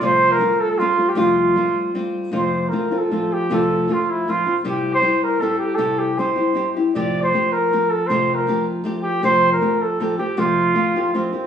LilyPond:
<<
  \new Staff \with { instrumentName = "Trumpet" } { \time 3/4 \key f \major \tempo 4 = 158 c''8. bes'8. a'16 a'16 f'8. g'16 | f'2 r4 | c''8. bes'8. a'4 g'8 | a'4 f'8 e'8 f'8. r16 |
g'8. c''8. bes'8 a'8 g'8 | a'8 g'8 c''4. r8 | d''8. c''8. bes'4 a'8 | c''8. bes'8. r4 g'8 |
c''8. bes'8. a'8 a'8 g'8 | f'2~ f'8 r8 | }
  \new Staff \with { instrumentName = "Trumpet" } { \time 3/4 \key f \major r2. | r2. | r2. | r2. |
r2. | r2. | r2. | r2. |
r2. | r4 f'4 c'4 | }
  \new Staff \with { instrumentName = "Nylon-string guitar" } { \time 3/4 \key f \major <f, c g a c' f'>4 <g a c' f'>4 <g a c' f'>8 <g a c' f'>8 | <f, c g a c' f'>4 <g a c' f'>4 <g a c' f'>4 | <f, c f a c' f'>4 <f a c' f'>8 <f a c' f'>8 <f a c' f'>4 | <f, c f a c' f'>4 <f a c' f'>4 <f a c' f'>8 <f a c' f'>8 |
<c g c' e' g'>4 <g c' e' g'>4 <g c' e' g'>4 | <c g c' e' g'>4 <g c' e' g'>8 <c' e' g'>8 <g c' e' g'>8 <c' e' g'>8 | <f, c f a c' g'>4 <f a c' g'>4 <f a c' g'>4 | <f, c f a c' g'>4 <f a c' g'>4 <f a c' g'>4 |
<f, c f a c' g'>4 <f a c' g'>4 <f a c' g'>8 <f a c' g'>8 | <f, c f a c' g'>4 <f a c' g'>8 <f a c' g'>8 <f a c' g'>8 <f a c' g'>8 | }
>>